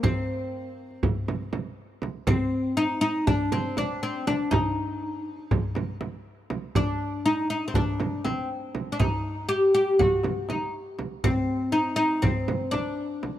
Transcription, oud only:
0.04 C4
2.27 C4
2.77 D#4
3.01 D#4
3.27 D4
3.52 C4
3.78 D4
4.03 C4
4.27 D4
4.51 D#4
6.76 D4
7.26 D#4
7.50 D#4
7.68 C4
7.75 D4
8.25 C4
8.92 D4
9.00 D#4
9.49 G4
9.74 G4
9.99 F#4
10.50 D#4
11.24 C4
11.72 D#4
11.96 D#4
12.22 C4
12.71 D4

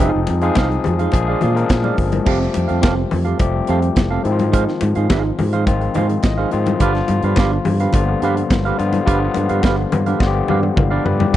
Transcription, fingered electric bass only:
0.15 F1
0.30 F2
0.57 C2
0.87 F2
1.14 A#1
1.43 A#2
1.70 A#2
1.98 G1
2.27 F1
2.57 F2
2.71 F2
2.84 F1
3.13 F2
3.40 F1
3.69 F2
3.97 F1
4.25 G#2
4.82 G#2
4.97 G#2
5.11 G#1
5.40 G#2
5.68 G#1
5.97 G#2
6.24 G#1
6.54 G#2
6.81 G1
7.09 G2
7.23 G2
7.38 G1
7.66 G2
7.94 G1
8.22 G2
8.51 G1
8.80 G2
9.08 G1
9.37 G2
9.51 G2
9.64 G1
9.93 G2
10.21 G1
10.50 G2
10.78 G1
11.06 G2

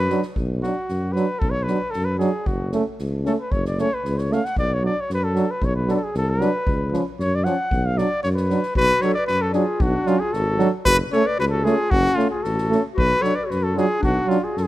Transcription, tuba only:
Already playing: F#2
0.38 B1
0.89 F#2
1.42 B1
1.95 F#2
2.48 F#1
3.00 C#2
3.54 F#1
4.05 C#2
4.58 B1
5.10 F#2
5.62 B1
6.15 C2
6.67 C#2
7.19 F#2
7.71 B1
8.24 F#2
8.76 B1
9.29 F#2
9.81 B1
10.34 G#1
10.86 F#1
11.40 C#2
11.92 F#1
12.45 A1
12.98 B1
13.51 F#2
14.04 B1
14.56 F#2

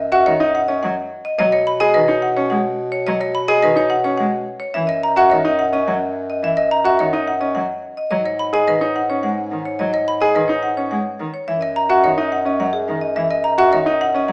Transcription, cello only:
0.27 D#3
0.83 F#3
1.39 F#3
1.95 D#3
2.51 G#3
3.07 F#3
3.63 D#3
4.19 G#3
4.75 E3
5.32 D#3
5.87 F#3
6.43 E3
6.99 D#3
7.55 F#3
8.11 F#3
8.67 D#3
9.23 G#3
9.51 D#3
9.79 F#3
10.36 D#3
10.91 G#3
11.20 D#3
11.48 E3
12.04 D#3
12.60 F#3
12.88 D#3
13.16 E3
13.72 D#3
14.28 F#3

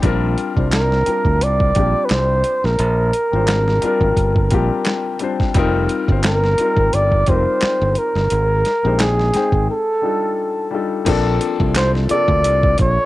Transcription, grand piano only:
0.02 G3 C4 D4 F4 A#4
0.56 G3 C4 D4 F4 C5
1.06 G3 C4 D4 F4 A#4
1.75 G3 C4 D4 F4 G4
3.32 G3 C4 D4 F4 C5
3.81 G3 C4 D4 F4
3.86 A#4
4.50 G3 C4 D4 F4 G4
5.20 G3 C4 D4 F4 C5
5.54 G3 C4 D#4 F4
5.58 A#4
6.08 G3 C4 D#4 F4
6.12 C5
6.58 G3 C4 D#4 F4
6.62 A#4
7.27 G3 C4 D#4 F4 A#4
8.83 G#3 C4 D#4 G4 C5
9.34 G#3 C4 D#4 C5 G5
10.02 G3 D4 D#4 F4
10.06 A4
10.71 G3 D4 D#4 F4
10.75 A4
11.05 F3 A#3 C4 D4 A4
12.09 C3 F3 A#3 D4
12.13 A4

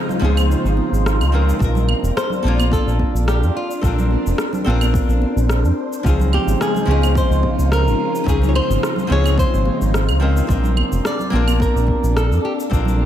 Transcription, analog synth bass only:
0.22 C#2
0.64 G#1
0.92 G#1
1.20 C#2
1.60 A#1
2.03 F1
2.44 A#1
2.87 A#1
3.14 A#1
3.42 F2
3.83 A#1
4.26 F1
4.66 A#1
5.08 A#1
5.36 A#1
5.63 F2
6.05 C#2
6.47 G#1
6.87 C#2
7.30 C#2
7.58 C#2
7.87 G#1
8.26 C#2
8.70 G#1
9.10 C#2
9.53 G#1
9.81 G#1
10.09 C#2
10.49 A#1
10.92 F1
11.33 A#1
11.75 A#1
12.03 A#1
12.31 F2
12.71 A#1

